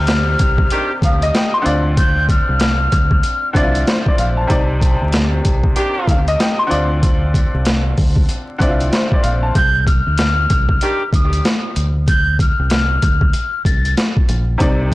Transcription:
0.00 0.35 D2 medium
0.00 0.33 C3 medium
0.00 0.34 C4 medium
0.00 0.34 D#4 medium
0.00 0.35 D5 medium
0.00 0.98 F6 loud
0.07 snare loud
0.07 closed hi-hat medium
0.39 0.68 C2 medium
0.39 kick loud
0.39 closed hi-hat medium
0.58 kick medium
0.71 0.91 D#3 loud
0.71 0.91 D4 loud
0.71 0.91 G4 loud
0.71 closed hi-hat medium
1.02 1.30 D2 medium
1.02 1.22 F5 medium
1.02 1.31 D#6 medium
1.02 kick loud
1.02 closed hi-hat medium
1.22 1.34 D#5 medium
1.22 closed hi-hat soft
1.34 1.53 G5 medium
1.34 snare loud
1.34 closed hi-hat medium
1.54 1.84 C6 medium
1.62 2.66 D3 medium
1.62 2.67 C4 medium
1.62 2.67 F4 medium
1.62 2.68 D5 loud
1.66 2.39 D2 medium
1.66 closed hi-hat medium
1.97 2.26 G6 loud
1.97 kick loud
1.97 closed hi-hat loud
2.29 3.52 F6 medium
2.29 kick loud
2.29 closed hi-hat medium
2.49 2.87 C2 medium
2.60 snare loud
2.60 closed hi-hat medium
2.92 3.20 D2 medium
2.92 kick loud
2.92 closed hi-hat medium
3.11 kick medium
3.23 closed hi-hat medium
3.53 3.83 C2 medium
3.53 4.21 D3 medium
3.53 4.21 C4 medium
3.53 3.63 E4 medium
3.53 3.88 D5 medium
3.53 3.83 A6 medium
3.53 kick loud
3.53 closed hi-hat medium
3.62 4.25 F4 medium
3.75 closed hi-hat soft
3.87 4.06 C5 medium
3.87 snare loud
3.87 closed hi-hat medium
4.06 4.19 D5 medium
4.06 kick loud
4.18 4.47 A#1 medium
4.18 4.37 F5 medium
4.18 closed hi-hat medium
4.37 4.68 A5 medium
4.47 4.95 C2 loud
4.47 5.38 C3 medium
4.47 5.39 C4 medium
4.47 5.39 D#4 medium
4.47 5.40 D5 medium
4.47 kick loud
4.47 closed hi-hat loud
4.82 kick medium
4.82 closed hi-hat medium
5.02 5.40 D2 medium
5.12 snare loud
5.12 closed hi-hat medium
5.45 5.73 C2 medium
5.45 kick medium
5.45 closed hi-hat medium
5.64 kick medium
5.76 6.20 D#3 loud
5.76 6.20 D4 loud
5.76 6.20 G4 loud
5.76 closed hi-hat medium
6.08 6.36 D2 medium
6.08 6.27 F5 medium
6.08 kick loud
6.08 closed hi-hat medium
6.28 6.39 D#5 medium
6.28 closed hi-hat soft
6.40 6.58 G5 medium
6.40 snare loud
6.40 closed hi-hat medium
6.59 6.89 C6 medium
6.67 7.72 D3 medium
6.67 7.72 C4 medium
6.67 7.73 F4 medium
6.67 7.73 D5 loud
6.71 7.44 D2 medium
6.71 closed hi-hat medium
7.03 kick loud
7.03 closed hi-hat loud
7.34 kick medium
7.34 closed hi-hat medium
7.54 7.93 C2 medium
7.65 snare loud
7.65 closed hi-hat medium
7.98 8.26 D2 medium
7.98 kick loud
7.98 open hi-hat medium
8.16 kick medium
8.29 closed hi-hat medium
8.58 8.88 C2 loud
8.58 9.26 D3 medium
8.58 9.27 C4 medium
8.58 8.69 E4 medium
8.58 8.93 D5 medium
8.58 kick loud
8.58 closed hi-hat medium
8.67 9.31 F4 medium
8.80 closed hi-hat medium
8.93 9.11 C5 medium
8.93 snare loud
8.93 closed hi-hat medium
9.12 9.24 D5 medium
9.12 kick loud
9.23 9.52 A#1 medium
9.23 9.42 F5 medium
9.23 closed hi-hat medium
9.43 9.54 A5 medium
9.55 10.00 C2 loud
9.55 9.84 G6 loud
9.55 kick loud
9.55 closed hi-hat loud
9.86 11.09 F6 loud
9.86 kick medium
9.86 closed hi-hat medium
10.07 10.45 D2 medium
10.18 snare loud
10.18 closed hi-hat medium
10.50 10.78 C2 medium
10.50 kick medium
10.50 closed hi-hat medium
10.69 kick medium
10.81 11.02 D#3 loud
10.81 11.02 D4 loud
10.81 11.02 G4 loud
10.81 closed hi-hat medium
11.13 11.41 D2 medium
11.13 11.42 D#6 medium
11.13 kick medium
11.13 closed hi-hat medium
11.33 closed hi-hat soft
11.45 snare loud
11.45 closed hi-hat medium
11.76 12.49 D2 medium
11.76 closed hi-hat medium
12.08 12.36 G6 loud
12.08 kick loud
12.08 closed hi-hat loud
12.39 13.62 F6 medium
12.39 kick loud
12.39 closed hi-hat medium
12.59 12.98 C2 medium
12.70 snare loud
12.70 closed hi-hat medium
13.02 13.31 D2 medium
13.02 kick loud
13.02 closed hi-hat medium
13.21 kick medium
13.33 closed hi-hat medium
13.65 13.93 C2 medium
13.65 13.94 A6 medium
13.65 kick medium
13.65 closed hi-hat medium
13.85 closed hi-hat medium
13.97 snare loud
13.97 closed hi-hat medium
14.17 kick loud
14.29 14.57 A#1 medium
14.29 closed hi-hat medium
14.58 14.94 C2 loud
14.58 14.94 C3 medium
14.58 14.94 C4 medium
14.58 14.94 D#4 medium
14.58 14.94 D5 medium
14.58 kick loud
14.58 closed hi-hat loud

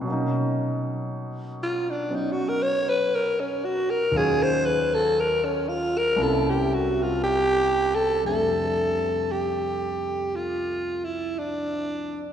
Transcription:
0.01 4.11 B2 medium
0.01 2.08 F#3 medium
0.07 4.14 A#3 medium
0.07 2.10 C#4 medium
0.12 4.17 D#4 medium
1.63 1.92 F4 medium
1.90 2.17 D4 medium
2.09 4.12 F#3 soft
2.09 4.14 B3 soft
2.09 4.14 C#4 soft
2.15 2.33 D#4 medium
2.32 2.50 F#4 medium
2.49 2.64 A#4 medium
2.62 2.91 C#5 medium
2.89 3.16 B4 medium
3.15 3.42 A#4 medium
3.40 3.66 C#4 medium
3.65 3.92 F#4 medium
3.90 4.18 A#4 medium
4.12 6.17 D#2 medium
4.12 6.18 D#3 medium
4.12 6.19 F#3 medium
4.12 6.19 C#4 medium
4.16 6.20 F4 medium
4.16 4.44 G#4 medium
4.43 4.67 C5 loud
4.65 4.96 B4 medium
4.94 5.21 A4 loud
5.20 5.46 A#4 medium
5.45 5.70 C#4 medium
5.69 5.99 F4 medium
5.98 6.24 A#4 loud
6.16 8.24 C2 medium
6.16 8.23 C3 medium
6.16 8.25 A#3 medium
6.16 8.26 C#4 medium
6.21 8.27 E4 medium
6.21 6.51 A4 medium
6.50 6.75 G4 medium
6.74 7.04 F#4 medium
7.02 7.21 F4 medium
7.24 7.96 G4 loud
7.95 8.26 A4 loud
8.23 12.33 F2 soft
8.23 12.33 C3 soft
8.23 12.33 G3 soft
8.23 12.33 A3 soft
8.23 9.33 A4 medium
8.28 12.33 D4 soft
8.28 12.33 E5 soft
9.31 10.37 G4 medium
10.35 11.06 F4 medium
11.04 11.40 E4 medium
11.38 12.22 D4 medium

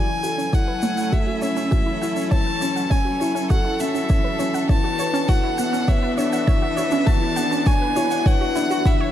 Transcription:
0.00 2.27 F#1 medium
0.00 0.22 E3 medium
0.00 4.65 F#3 medium
0.00 4.65 C#4 medium
0.00 4.65 E4 medium
0.00 9.12 A4 medium
0.00 0.55 G#5 loud
0.00 2.29 G#5 medium
0.08 0.23 E4 medium
0.23 0.52 A4 medium
0.23 0.38 F#5 medium
0.23 shaker medium
0.38 0.48 C#4 medium
0.38 shaker soft
0.53 0.81 E4 medium
0.53 0.59 C#5 medium
0.53 1.15 F#5 medium
0.53 kick medium
0.53 shaker soft
0.68 0.78 B4 medium
0.82 1.11 A3 medium
0.82 0.93 C#5 medium
0.82 shaker medium
0.97 1.04 F#5 medium
0.97 shaker soft
1.12 1.41 A4 medium
1.12 1.22 C#5 medium
1.12 1.43 E5 medium
1.12 kick medium
1.12 shaker soft
1.27 1.42 F#4 medium
1.42 1.71 C#4 medium
1.42 1.48 C#5 medium
1.42 2.28 E5 medium
1.42 shaker medium
1.57 1.71 C#4 loud
1.57 shaker soft
1.71 2.01 E3 medium
1.71 1.82 F#4 medium
1.71 kick loud
1.71 shaker soft
1.86 2.01 E4 medium
2.02 2.30 E4 medium
2.02 2.16 F#5 medium
2.02 shaker medium
2.16 2.26 C#4 medium
2.16 shaker medium
2.31 3.75 F#1 medium
2.31 2.60 E3 medium
2.31 9.12 F#4 medium
2.31 2.37 C#5 medium
2.31 2.92 A5 loud
2.31 kick medium
2.31 shaker soft
2.46 2.56 B4 medium
2.61 2.89 C#4 medium
2.61 2.71 C#5 medium
2.61 shaker medium
2.76 2.82 F#5 medium
2.76 shaker medium
2.90 3.01 C#5 medium
2.90 3.50 G#5 loud
2.90 kick medium
2.90 shaker soft
3.05 3.20 F#4 medium
3.20 3.49 E4 loud
3.20 3.26 C#5 medium
3.20 shaker medium
3.35 3.49 C#4 medium
3.35 shaker medium
3.50 3.60 F#4 medium
3.50 3.79 A4 medium
3.50 3.82 F#5 loud
3.50 kick loud
3.50 shaker soft
3.65 3.79 E4 medium
3.80 4.64 G#1 medium
3.80 4.09 C#4 medium
3.80 4.69 E5 medium
3.80 3.94 F#5 medium
3.80 shaker medium
3.95 4.05 C#4 medium
3.95 shaker medium
4.09 4.38 E3 medium
4.09 4.16 C#5 medium
4.09 kick loud
4.09 shaker medium
4.24 4.34 B4 medium
4.39 4.68 C#4 medium
4.39 4.49 C#5 medium
4.39 shaker medium
4.54 4.60 F#5 medium
4.54 shaker medium
4.69 7.02 E1 loud
4.69 4.98 E3 medium
4.69 9.12 E3 medium
4.69 9.12 B3 medium
4.69 9.12 D4 medium
4.69 4.79 C#5 medium
4.69 5.30 A5 loud
4.69 kick loud
4.69 shaker soft
4.84 4.98 F#4 medium
4.99 5.27 B4 medium
4.99 5.05 C#5 medium
4.99 shaker medium
5.14 5.28 C#4 loud
5.14 shaker medium
5.28 5.57 E4 medium
5.28 5.39 F#4 loud
5.28 5.90 F#5 medium
5.28 kick medium
5.28 shaker soft
5.43 5.58 E4 medium
5.58 5.87 B3 medium
5.58 5.72 F#5 medium
5.58 shaker medium
5.73 5.83 C#4 medium
5.73 shaker medium
5.88 6.16 B4 medium
5.88 5.94 C#5 medium
5.88 6.17 E5 loud
5.88 kick loud
5.88 shaker soft
6.03 6.13 B4 medium
6.17 6.46 D4 medium
6.17 6.28 C#5 medium
6.17 7.08 E5 medium
6.17 shaker medium
6.33 6.39 F#5 medium
6.33 shaker medium
6.47 6.76 E3 medium
6.47 6.57 C#5 medium
6.47 kick loud
6.47 shaker soft
6.62 6.76 F#4 medium
6.77 7.06 E4 medium
6.77 6.83 C#5 medium
6.77 shaker medium
6.91 7.06 C#4 loud
6.91 shaker medium
7.07 8.51 E1 medium
7.07 7.35 E3 medium
7.07 7.17 F#4 loud
7.07 7.68 A5 loud
7.07 kick loud
7.07 shaker soft
7.21 7.36 E4 medium
7.36 7.65 D4 medium
7.36 7.51 F#5 medium
7.36 shaker medium
7.51 7.61 C#4 medium
7.51 shaker medium
7.66 7.95 D4 medium
7.66 7.72 C#5 medium
7.66 8.28 G#5 medium
7.66 kick loud
7.66 shaker soft
7.81 7.91 B4 medium
7.96 8.25 E4 loud
7.96 8.06 C#5 medium
7.96 shaker medium
8.11 8.17 F#5 medium
8.11 shaker medium
8.26 8.54 B4 medium
8.26 8.36 C#5 medium
8.26 8.88 F#5 loud
8.26 kick loud
8.26 shaker medium
8.41 8.55 F#4 medium
8.55 9.12 F#1 loud
8.55 8.84 D4 medium
8.55 8.65 E4 medium
8.55 shaker medium
8.70 8.80 F#4 medium
8.70 shaker medium
8.85 9.12 E3 medium
8.85 8.95 E4 medium
8.85 9.12 E5 medium
8.85 kick loud
8.85 shaker medium
9.00 9.12 C#5 medium

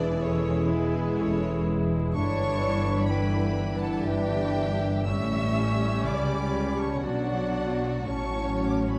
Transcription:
0.00 1.15 E1 medium
0.00 1.15 E2 medium
0.00 2.19 E2 medium
0.00 1.66 B2 soft
0.00 2.17 E3 medium
0.00 2.11 G#3 medium
0.00 2.16 G#3 medium
0.00 1.90 B3 medium
0.00 0.21 D4 medium
0.00 0.44 E4 soft
0.00 2.11 E4 medium
0.00 2.12 E4 medium
0.00 2.18 G#4 medium
0.00 0.21 B4 medium
0.00 0.18 D5 loud
0.20 0.68 C#4 medium
0.20 0.69 G#4 medium
0.20 0.69 A4 medium
0.20 0.69 C#5 medium
0.45 0.92 E4 medium
0.69 1.18 B3 medium
0.69 1.19 G#4 medium
0.69 1.16 G#4 medium
0.69 1.18 B4 medium
1.18 2.15 E1 medium
1.18 2.14 E2 medium
1.18 1.68 C#4 medium
1.18 2.19 G#4 medium
1.18 1.67 A4 medium
1.18 1.67 C#5 medium
1.67 2.19 B2 soft
1.92 2.62 B3 soft
2.12 4.04 G2 medium
2.12 4.03 G2 medium
2.12 4.06 D3 medium
2.12 5.03 E3 medium
2.12 3.09 E3 medium
2.12 5.02 D4 medium
2.12 3.07 D4 medium
2.12 4.05 E4 medium
2.12 3.11 A5 medium
2.12 3.04 C#6 loud
2.17 4.04 G1 medium
2.17 3.06 C#5 loud
2.40 4.09 D3 soft
2.63 4.08 B3 medium
3.08 4.03 E3 medium
3.08 4.03 D4 medium
3.08 3.55 E4 medium
3.08 3.81 B4 medium
3.08 3.79 G5 medium
3.08 3.79 B5 medium
3.32 3.80 D4 medium
3.56 7.07 E4 medium
3.79 4.80 D4 medium
3.79 4.05 A4 medium
3.79 4.06 F#5 medium
3.79 4.04 A5 medium
4.04 5.06 G1 medium
4.04 5.12 G2 medium
4.04 5.06 G2 medium
4.04 4.79 E3 medium
4.04 5.06 E3 medium
4.04 5.06 D4 medium
4.04 4.79 D4 medium
4.04 5.08 G4 medium
4.04 5.09 E5 medium
4.04 5.08 G5 loud
4.29 5.12 D3 medium
4.56 5.12 A#3 soft
4.81 5.12 D4 medium
5.06 6.07 A1 medium
5.06 7.07 A2 medium
5.06 6.07 A2 medium
5.06 6.84 G3 medium
5.06 7.04 G3 medium
5.06 7.06 G3 medium
5.06 6.84 C#4 medium
5.06 7.04 C#4 medium
5.06 7.06 C#4 medium
5.06 6.05 E5 medium
5.06 6.09 C#6 medium
5.06 6.04 E6 loud
5.33 7.07 E3 soft
5.59 7.54 A3 medium
6.07 7.04 C#2 medium
6.07 7.04 C#3 medium
6.07 6.54 G4 soft
6.07 6.80 D5 medium
6.07 6.81 B5 medium
6.07 6.79 D6 medium
6.55 7.07 G4 soft
6.79 7.03 C#5 medium
6.79 7.04 A5 medium
6.79 7.03 C#6 medium
7.01 8.06 B1 medium
7.01 8.12 B2 medium
7.01 8.06 B2 medium
7.01 8.99 F#3 medium
7.01 8.05 F#3 medium
7.01 8.04 D4 medium
7.01 8.07 D4 medium
7.01 8.06 F#4 medium
7.01 8.07 D5 medium
7.01 8.06 F#5 medium
7.05 8.07 F#3 medium
7.05 8.08 D4 medium
7.29 8.32 F#3 soft
7.56 8.56 A3 soft
8.06 8.99 A1 medium
8.06 8.99 A2 medium
8.06 8.99 F#3 medium
8.06 8.99 C#4 medium
8.06 8.99 C#5 medium
8.06 8.79 A5 medium
8.06 8.69 C#6 medium
8.33 8.99 F#3 soft
8.57 8.99 A3 soft
8.71 8.80 D6 medium
8.81 8.89 C#6 medium
8.90 8.98 B5 medium

